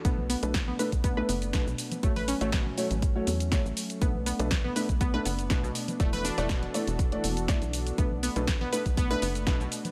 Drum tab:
HH |x-oxx-oxx-oxx-ox|xooxx-oxx-oxx-ox|x-oxx-oxx-oxx-ox|xooxxxoxxxoxxxox|
SH |x-xxx-xxx-xxxxxx|x-xxx-xxx-xxxxxx|x-xxx-xxx-xxxxxx|xxxxx-xxx-xxxxxx|
SD |----o-------o---|----o-------o---|----o-------o---|----o-------o---|
CG |-Oo--O----o----O|-Oo--O----o-o---|-Oo--O----o----O|-Oo--O----o-o---|
BD |o---o--oo---o---|o---o---o---o---|o---o--oo---o---|o---o---o---o---|

HH |x-oxx-oxx-oxx-ox|
SH |x-xxx-xxx-xxxxxx|
SD |----o-------o---|
CG |-Oo--O----o----O|
BD |o---o--oo---o---|